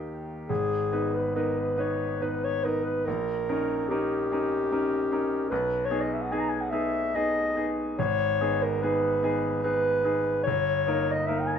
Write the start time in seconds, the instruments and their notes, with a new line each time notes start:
Already playing: grand piano A#3 D#4 G4
0.49 grand piano G#1, clarinet G#4
0.92 grand piano B3 D#4 B4
1.14 clarinet B4
1.35 grand piano B3 D#4 B4, clarinet A#4
1.58 clarinet B4
1.77 grand piano B3 D#4 B4, clarinet C#5
2.21 grand piano B3 D#4 B4, clarinet B4
2.44 clarinet C#5
2.64 grand piano B3 D#4 B4, clarinet A#4
2.84 clarinet B4
3.05 grand piano A#1, clarinet A#4
3.49 grand piano C#4 D#4 A#4
3.88 grand piano C#4 D#4 A#4, clarinet G4
4.32 grand piano C#4 D#4 A#4
4.72 grand piano C#4 D#4 A#4
5.12 grand piano C#4 D#4 A#4
5.50 grand piano B1, clarinet B4
5.85 clarinet C#5
5.90 grand piano B3 D#4 G#4
6.01 clarinet D#5
6.14 clarinet E5
6.22 clarinet F#5
6.32 grand piano B3 D#4 G#4, clarinet G#5
6.38 clarinet A#5
6.49 clarinet G#5
6.61 clarinet F#5
6.70 grand piano B3 D#4 G#4, clarinet E5
7.14 grand piano B3 D#4 G#4, clarinet D#5
7.56 grand piano B3 D#4 G#4
7.99 grand piano G#1, clarinet C#5
8.41 grand piano B3 D#4 G#4
8.62 clarinet A#4
8.82 grand piano B3 D#4 G#4, clarinet B4
9.22 grand piano B3 D#4 G#4
9.63 grand piano B3 D#4 G#4, clarinet B4
10.04 grand piano B3 D#4 G#4
10.43 grand piano G1, clarinet C#5
10.87 grand piano A#3 D#4 A#4
11.12 clarinet D#5
11.26 grand piano A#3 D#4 A#4, clarinet E5
11.39 clarinet G5
11.47 clarinet G#5
11.55 clarinet A#5